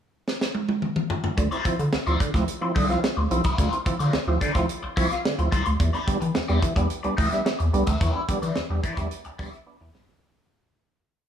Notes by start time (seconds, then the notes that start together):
0.28 snare
0.41 snare
0.55 high tom
0.69 high tom
0.82 mid tom
0.96 mid tom
1.10 floor tom
1.24 floor tom
1.37 D2 D3, muted overdriven electric guitar stroke, kick, closed hi-hat
1.51 C4 E4 F4 C5 D5, closed hi-hat
1.65 D3 F3 C4 E4, muted overdriven electric guitar stroke, kick, closed hi-hat
1.79 D3, muted overdriven electric guitar stroke, closed hi-hat
1.93 D2, muted overdriven electric guitar stroke, snare
2.07 D2 F3 C4 E4 F4 C5 D5, closed hi-hat
2.20 D3, muted overdriven electric guitar stroke, kick, closed hi-hat
2.34 D2 F3 C4 E4, muted overdriven electric guitar stroke, kick, snare, closed hi-hat
2.48 closed hi-hat
2.61 F3 C4 E4, muted overdriven electric guitar stroke
2.75 C2 D3 F4 C5 E5, kick, open hi-hat
2.90 F3 C4 E4, muted overdriven electric guitar stroke, snare, closed hi-hat
3.03 muted overdriven electric guitar stroke, snare
3.17 D2, muted overdriven electric guitar stroke
3.31 B1 F3 C4 E4, closed hi-hat
3.44 C2 F4 C5 E5, kick, closed hi-hat
3.58 D2 D3 F4 C5 D5, kick, closed hi-hat
3.72 C4 E4, muted overdriven electric guitar stroke, closed hi-hat
3.86 D3 F3 C4 E4, muted overdriven electric guitar stroke, kick, closed hi-hat
3.99 D3 F4 C5 D5, closed hi-hat
4.13 D2, muted overdriven electric guitar stroke, snare
4.27 D2 F3 C4 E4, muted overdriven electric guitar stroke
4.41 D3 F4 C5 D5, kick, closed hi-hat
4.55 D2 F3 C4 E4, muted overdriven electric guitar stroke, kick, snare, closed hi-hat
4.69 closed hi-hat
4.83 C2, muted overdriven electric guitar stroke
4.96 C2 F3 C4 E4 F4 C5 D5, kick, open hi-hat
5.11 muted overdriven electric guitar stroke, snare, closed hi-hat
5.25 D3, snare
5.38 D2 F3 C4 E4, muted overdriven electric guitar stroke, closed hi-hat
5.52 C2 C4 E4 F4 C5 D5, kick, closed hi-hat
5.65 D2, muted overdriven electric guitar stroke, closed hi-hat
5.80 E2 E3, muted overdriven electric guitar stroke, kick, closed hi-hat
5.93 B3 D4 E4 G4 D5, closed hi-hat
6.07 E3 G3 B3 D4, muted overdriven electric guitar stroke, kick, closed hi-hat
6.21 E3, muted overdriven electric guitar stroke, closed hi-hat
6.34 E2, muted overdriven electric guitar stroke, snare
6.48 E2 G3 B3 D4 E4 G4 D5, closed hi-hat
6.62 E3, muted overdriven electric guitar stroke, kick, closed hi-hat
6.76 E2 G3 B3 D4, muted overdriven electric guitar stroke, kick, closed hi-hat
6.90 closed hi-hat
7.03 D2 G3 B3 D4, muted overdriven electric guitar stroke, closed hi-hat
7.17 D2 E3 E4 G4 E5, kick, open hi-hat
7.31 G3 B3 D4, muted overdriven electric guitar stroke, snare, closed hi-hat
7.45 muted overdriven electric guitar stroke, snare
7.59 E2, muted overdriven electric guitar stroke, closed hi-hat
7.73 C2 G3 B3 D4, closed hi-hat
7.86 D2 E4 G4 E5, kick, closed hi-hat
8.00 E2 E3 E4 G4 D5, kick, closed hi-hat
8.14 B3 D4, muted overdriven electric guitar stroke
8.28 E3 G3 B3 D4, muted overdriven electric guitar stroke, kick, closed hi-hat
8.42 E3 E4 G4 D5, closed hi-hat
8.56 E2, muted overdriven electric guitar stroke, snare
8.70 E2 G3 B3 D4, muted overdriven electric guitar stroke
8.83 E3 E4 G4 D5, kick, closed hi-hat
8.97 E2 G3 B3 D4, muted overdriven electric guitar stroke, kick, snare, closed hi-hat
9.11 closed hi-hat
9.25 D2, muted overdriven electric guitar stroke, closed hi-hat
9.39 D2 G3 B3 D4 E4 G4 D5, kick, open hi-hat
9.53 muted overdriven electric guitar stroke, snare, closed hi-hat
9.66 B3 D4
9.80 E2 E3, muted overdriven electric guitar stroke
9.94 C2 B3 D4 E4 G4 D5, snare
10.08 D2, muted overdriven electric guitar stroke, snare